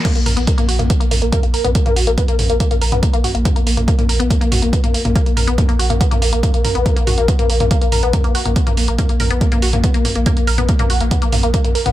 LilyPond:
<<
  \new Staff \with { instrumentName = "Synth arpeggio sound" } { \time 4/4 \key ces \lydian \tempo 4 = 141 bes16 bes16 bes'16 ces'16 bes16 bes16 ges'16 bes16 ces'16 bes16 bes16 bes16 bes16 bes16 bes'16 ces'16 | bes16 bes16 ges'16 bes16 ces'16 bes16 bes16 bes16 bes16 bes16 bes'16 ces'16 bes16 bes16 ges'16 bes16 | ces'16 bes16 bes16 bes16 bes16 bes16 bes'16 ces'16 bes16 bes16 ges'16 bes16 ces'16 bes16 bes16 bes16 | bes16 bes16 bes'16 ces'16 bes16 bes16 ges'16 bes16 ces'16 bes16 bes16 bes16 bes16 bes16 bes'16 ces'16 |
bes16 bes16 ges'16 bes16 ces'16 bes16 bes16 bes16 bes16 bes16 bes'16 ces'16 bes16 bes16 ges'16 bes16 | ces'16 bes16 bes16 bes16 bes16 bes16 bes'16 ces'16 bes16 bes16 ges'16 bes16 ces'16 bes16 bes16 bes16 | bes16 bes16 bes'16 ces'16 bes16 bes16 ges'16 bes16 ces'16 bes16 bes16 bes16 bes16 bes16 bes'16 ces'16 | }
  \new Staff \with { instrumentName = "Sub bass" } { \clef bass \time 4/4 \key ces \lydian r16 bes,,16 bes,,16 bes,,16 r16 bes,,16 bes,,16 bes,,16 r16 bes,,16 bes,,16 bes,,16 r16 bes,,16 r16 bes,,16 | r16 bes,,16 bes,,16 bes,,16 r16 bes,,16 bes,,16 bes,,16 r16 bes,,16 bes,,16 bes,,16 r16 bes,,16 r16 bes,,16 | r16 bes,,16 bes,,16 bes,,16 r16 bes,,16 bes,,16 bes,,16 r16 bes,,16 bes,,16 bes,,16 r16 bes,,16 r16 bes,,16 | r16 bes,,16 bes,,16 bes,,16 r16 bes,,16 bes,,16 bes,,16 r16 bes,,16 bes,,16 bes,,16 r16 bes,,16 r16 bes,,16 |
r16 bes,,16 bes,,16 bes,,16 r16 bes,,16 bes,,16 bes,,16 r16 bes,,16 bes,,16 bes,,16 r16 bes,,16 r16 bes,,16 | r16 bes,,16 bes,,16 bes,,16 r16 bes,,16 bes,,16 bes,,16 r16 bes,,16 bes,,16 bes,,16 r16 bes,,16 r16 bes,,16 | r16 bes,,16 bes,,16 bes,,16 r16 bes,,16 bes,,16 bes,,16 r16 bes,,16 bes,,16 bes,,16 r16 bes,,16 r16 bes,,16 | }
  \new DrumStaff \with { instrumentName = "Drums" } \drummode { \time 4/4 <cymc hh bd toml>16 hh16 <hho toml>16 hh16 <hh bd>16 <hh toml>16 hho16 <hh toml>16 <hh bd>16 hh16 <hho toml>16 hh16 <hh bd toml>16 hh16 hho16 <hh toml>16 | <hh bd>16 <hh toml>16 hho16 hh16 <hh bd toml>16 hh16 <hho toml>16 hh16 <hh bd>16 <hh toml>16 hho16 <hh toml>16 <hh bd>16 hh16 <hho toml>16 hh16 | <hh bd toml>16 hh16 hho16 <hh toml>16 <hh bd>16 <hh toml>16 hho16 hh16 <hh bd toml>16 hh16 <hho toml>16 hh16 <hh bd>16 <hh toml>16 hho16 <hh toml>16 | <hh bd>16 hh16 <hho toml>16 hh16 <hh bd toml>16 hh16 hho16 <hh toml>16 <hh bd>16 <hh toml>16 hho16 hh16 <hh bd toml>16 hh16 <hho toml>16 hh16 |
<hh bd toml>16 hh16 <hho toml>16 hh16 <hh bd>16 <hh toml>16 hho16 <hh toml>16 <hh bd>16 hh16 <hho toml>16 hh16 <hh bd toml>16 hh16 hho16 <hh toml>16 | <hh bd>16 <hh toml>16 hho16 hh16 <hh bd toml>16 hh16 <hho toml>16 hh16 <hh bd>16 <hh toml>16 hho16 <hh toml>16 <hh bd>16 hh16 <hho toml>16 hh16 | <hh bd toml>16 hh16 hho16 <hh toml>16 <hh bd>16 <hh toml>16 hho16 hh16 <hh bd toml>16 hh16 <hho toml>16 hh16 <hh bd>16 <hh toml>16 hho16 <hh toml>16 | }
>>